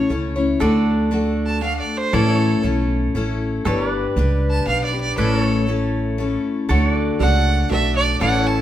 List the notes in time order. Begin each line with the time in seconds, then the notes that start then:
Already playing: E4 A4 C#5
0.10 C#2 A3 C#4 E4 C#5
0.36 A3 C#4 E4 C#5
0.60 D2 D3 A3 D4 F#4 A4 D5
1.11 A3 D4 F#4 A4
1.46 A5
1.61 A3 D4 F#4 A4 F5
1.80 D5
1.97 C5
2.13 A1 A2 E3 A3 C#4 E4 A4 D5
2.34 C#5
2.63 B1 A3 C#4 E4 A4
3.15 A1 A3 C#4 E4 A4
3.65 G1 G3 D4 G4 A4 B4 C#5
3.87 B4 D5
4.16 C#2 G3 D4 G4 B4
4.50 A5
4.67 B1 G3 D4 G4 B4 F5
4.84 D5
4.92 D4 G4 B4
5.01 D5
5.17 A1 A2 E3 A3 C#4 E4 A4 B4 D5
5.39 C#5
5.43 A4
5.68 A3 C#4 E4 A4
6.18 A3 C#4 E4 A4
6.69 D2 D3 A3 D4 F#4 A4 C#5
6.91 D5
7.19 C#2 A3 D4 F#4 A4 D5 F#5
7.69 B1 A3 D4 F#4 A4 D5 E5
7.96 D5
8.20 A1 A2 E3 A3 C#4 E4 A4 D5 F#5
8.42 C#5
8.47 A5